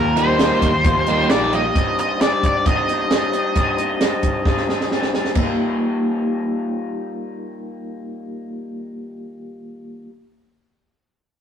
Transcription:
Already playing: D#2 A#2 D#3 G3 A#3 D#4 A#4
0.16 D#3 G3 A#3 D#4 C5, closed hi-hat
0.38 D#3 G3 A#3 D#4, snare, closed hi-hat
0.50 snare
0.62 D#2, kick, closed hi-hat
0.75 D#2
0.83 D#2 A#2 D#3 G3 A#3 D#4, kick, closed hi-hat
0.97 D#2
1.06 D#3 G3 A#3 D#4, closed hi-hat
1.29 A#1 D#3 G3 A#3 D#4 D5, snare, closed hi-hat
1.53 D#3 G3 A#3 D#4 D#5, closed hi-hat
1.75 C3 G3 C4 D4 D#4, kick, closed hi-hat
1.98 C4 D4 D#4 D#5, closed hi-hat
2.21 G3 C4 D4 D#4 D5, snare, closed hi-hat
2.43 D5, kick, closed hi-hat
2.65 C3 G3 C4 D4 D#4 D#5, kick, closed hi-hat
2.88 C4 D4 D#4, closed hi-hat
3.10 G3 C4 D4 D#4, snare, closed hi-hat
3.32 C4 D4 D#4, closed hi-hat
3.54 C3 G3 C4 D4 D#4, kick, closed hi-hat
3.77 C4 D4 D#4, closed hi-hat
4.00 G3 C4 D4 D#4, snare, closed hi-hat
4.23 kick, closed hi-hat
4.44 C3 G3 C4 D4 D#4, kick, snare
4.57 snare
4.67 C4 D4 D#4, snare
4.81 snare
4.90 G3 C4 D4 D#4, snare
5.02 snare
5.14 C4 D4 D#4, snare
5.25 snare
5.34 D#2 A#2 D#3 G3 A#3, kick, crash
5.39 D#4

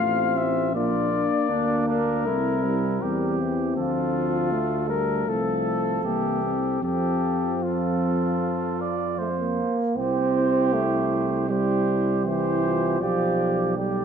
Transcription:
Already playing: F4 F5
0.00 A1 A3 C4
0.37 C4 E5
0.74 A#1 A#3 D4 F4 D5
1.14 D4
1.49 D2 A#3 D4
1.86 D4 A#4
2.26 C2 A3 C4 E4
2.64 G3
3.02 E2 G3 G4
3.40 E3
3.77 D2 F3 F4 A4
4.52 A3
4.90 G3 A#4
5.27 C2 F3 A4
6.03 C2 E3 A#3 G4
6.43 C4
6.82 F2 F3 C4 G4 A4
7.62 F4 A4
8.81 D5
9.18 A3 C5
9.38 A#3
9.96 C2 C4 E4 G4 C5
10.73 A3
11.49 G3 E4 G4 C5
12.25 E3 E4 G4 C5
12.65 F4
13.00 B1 F3 G4 D5
13.76 G3 G4 D5

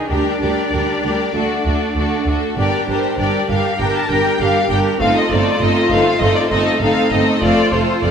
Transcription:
0.09 D2 G3 D4 G4 A#4 D5
0.41 D2 G3 D4 G4 A#4
0.72 D2 G3 D4 G4 A#4
1.03 D2 G3 D4 G4 A#4
1.34 D2 A3 D4 F#4 A4
1.65 D2 A3 D4 F#4 A4
1.95 D2 A3 D4 F#4 A4
2.27 D2 A3 D4 F#4 A4
2.58 G1 G3 D4 G4 A#4 D5
2.88 G1 G3 D4 G4 A#4 C5
3.19 G1 G3 D4 G4 A#4 D5
3.49 G1 G3 D4 G4 A#4 F5
3.79 G1 G3 D4 G4 A#4 G5
3.96 A5
4.10 G1 G3 D4 G4 A#4 G5
4.40 G1 G3 D4 G4 A#4 F5
4.70 G1 G3 D4 G4 A#4 G5
5.00 G1 A3 C4 D#4 F4 A4 F5
5.16 D#5
5.30 G1 A3 C4 D#4 A4 D5
5.60 G1 A3 C4 D#4 A4 D#5
5.90 G1 A3 C4 D#4 A4 F5
6.20 G1 A3 C4 D#4 A4 D#5
6.35 D5
6.50 G1 A3 C4 D#4 A4 D#5
6.81 G1 A3 C4 D#4 A4 F5
7.11 G1 A3 C4 D#4 A4 D#5
7.42 F1 A3 C4 F4 A4 D5
7.71 F1 A3 C4 F4 A4 C5
8.03 F1 A3 C4 F4 A4 D5

